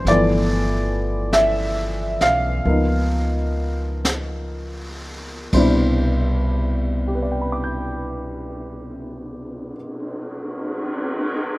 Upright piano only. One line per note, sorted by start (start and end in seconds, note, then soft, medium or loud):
0.00 0.10 D4 medium
0.08 2.67 E3 medium
0.08 2.64 F3 soft
0.08 2.66 A3 soft
0.08 2.66 B3 soft
0.08 1.30 D5 medium
1.33 2.17 E5 medium
2.22 4.01 F5 medium
2.65 5.53 F3 soft
2.65 5.54 A#3 soft
2.65 5.54 B3 soft
2.69 5.55 D#4 soft
5.54 9.76 B2 soft
5.54 9.75 C3 soft
5.54 9.75 G3 soft
5.54 9.76 D4 soft
5.54 9.77 E4 soft
5.54 9.70 C5 medium
7.08 11.24 G4 soft
7.15 11.31 B4 soft
7.23 11.39 D5 soft
7.32 11.48 G5 soft
7.41 11.58 B5 soft
7.52 11.58 D6 soft
7.64 11.58 G6 soft